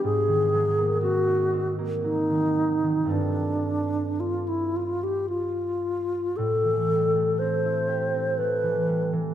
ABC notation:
X:1
M:3/4
L:1/16
Q:1/4=58
K:Gmix
V:1 name="Alto flute"
_A4 _G3 z _E4 | D4 F E F G F4 | A4 c4 B3 z |]
V:2 name="Harp" clef=bass
_A,, _E, _G, _B, C _E C B, G, E, G, E, | [G,,G,A,CF]12 | A,, E, G, A, C E G C A, E, G, E, |]